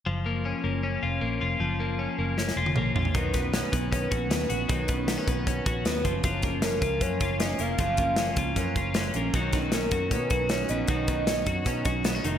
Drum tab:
HH |----------------|----------------|x-x-x-x-x-x-x-x-|x-x-x-x-x-x-x-x-|
SD |----------------|--------oo------|--o-o-------o---|----o-------o---|
T1 |----------------|-----------o----|----------------|----------------|
T2 |----------------|------------o---|----------------|----------------|
FT |----------------|--------------oo|----------------|----------------|
BD |----------------|----------------|o-o---o-o-o-----|o-o---o-o-o---o-|

HH |x-x-x-x-x-x-x-x-|x-x-x-x-x-x-x-x-|x-x-x-x-x-x-x-x-|x-x-x-x-x-x-x-x-|
SD |----o-------o---|----o-------o---|--o-o-------o---|----o-------o---|
T1 |----------------|----------------|----------------|----------------|
T2 |----------------|----------------|----------------|----------------|
FT |----------------|----------------|----------------|----------------|
BD |o-o---o-o-o-----|o-o---o-o-o-----|o-o---o-o-o-----|o-o---o-o-o-----|